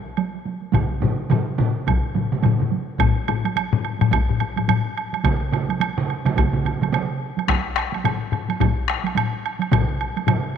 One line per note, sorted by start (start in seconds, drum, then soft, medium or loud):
0.06 taiko high soft
0.17 taiko high medium
0.17 high woodblock soft
0.34 taiko high soft
0.45 taiko high medium
0.62 taiko high soft
0.73 taiko medium
0.73 taiko low-mid medium
0.73 taiko mid medium
0.73 taiko high medium
0.73 high woodblock soft
0.90 taiko high soft
1.01 taiko low-mid medium
1.01 taiko mid medium
1.01 taiko high soft
1.19 taiko high soft
1.30 taiko low-mid medium
1.30 taiko mid medium
1.30 taiko high medium
1.30 high woodblock soft
1.47 taiko high soft
1.58 taiko low-mid medium
1.58 taiko mid medium
1.58 taiko high soft
1.87 taiko medium
1.87 taiko low-mid medium
1.87 taiko mid medium
1.87 taiko high medium
1.87 high woodblock soft
2.05 taiko high soft
2.15 taiko low-mid medium
2.15 taiko mid medium
2.15 taiko high soft
2.32 taiko low-mid medium
2.32 taiko mid medium
2.32 taiko high soft
2.42 taiko low-mid medium
2.42 taiko mid medium
2.42 taiko high medium
2.42 high woodblock soft
2.60 taiko low-mid medium
2.60 taiko mid medium
2.60 taiko high soft
2.71 taiko high soft
2.89 taiko high soft
2.99 taiko loud
2.99 taiko low-mid loud
2.99 taiko high medium
2.99 high woodblock medium
3.28 taiko low-mid medium
3.28 high woodblock medium
3.44 taiko high soft
3.44 high woodblock soft
3.56 taiko high medium
3.56 high woodblock medium
3.73 taiko low-mid loud
3.85 high woodblock soft
4.00 taiko low-mid loud
4.00 taiko high soft
4.00 high woodblock soft
4.11 taiko loud
4.11 taiko low-mid medium
4.11 taiko high medium
4.11 high woodblock medium
4.29 taiko low-mid medium
4.40 taiko low-mid medium
4.40 high woodblock soft
4.56 taiko low-mid medium
4.56 taiko high soft
4.56 high woodblock soft
4.68 taiko low-mid medium
4.68 taiko high medium
4.68 high woodblock medium
4.97 high woodblock soft
5.13 taiko high medium
5.13 high woodblock soft
5.24 taiko loud
5.24 taiko mid loud
5.24 taiko high medium
5.24 high woodblock medium
5.52 taiko mid medium
5.52 high woodblock soft
5.69 taiko high medium
5.69 high woodblock soft
5.80 taiko high medium
5.80 high woodblock medium
5.98 taiko mid medium
6.10 high woodblock soft
6.25 taiko mid medium
6.25 taiko high medium
6.25 high woodblock soft
6.36 taiko loud
6.36 taiko mid medium
6.36 taiko high medium
6.36 high woodblock medium
6.53 taiko mid medium
6.65 taiko mid medium
6.65 high woodblock soft
6.82 taiko mid medium
6.82 taiko high medium
6.82 high woodblock soft
6.92 taiko mid medium
6.92 taiko high medium
6.92 high woodblock medium
7.37 taiko high medium
7.37 high woodblock soft
7.48 taiko rim medium
7.48 taiko loud
7.48 taiko high medium
7.48 high woodblock soft
7.76 taiko rim medium
7.76 high woodblock soft
7.93 taiko high medium
7.93 high woodblock soft
8.04 taiko low-mid loud
8.04 taiko high medium
8.04 high woodblock medium
8.32 taiko low-mid medium
8.32 high woodblock soft
8.49 taiko high medium
8.49 high woodblock soft
8.60 taiko loud
8.60 taiko low-mid medium
8.60 taiko high medium
8.60 high woodblock medium
8.88 taiko rim medium
8.88 high woodblock soft
9.04 taiko high medium
9.04 high woodblock soft
9.15 taiko low-mid medium
9.15 taiko high medium
9.15 high woodblock medium
9.46 high woodblock soft
9.60 taiko high medium
9.60 high woodblock soft
9.72 taiko medium
9.72 taiko low-mid loud
9.72 taiko mid loud
9.72 taiko high medium
9.72 high woodblock medium
10.01 high woodblock soft
10.17 taiko high soft
10.17 high woodblock soft
10.28 taiko low-mid medium
10.28 taiko mid medium
10.28 taiko high medium
10.28 high woodblock medium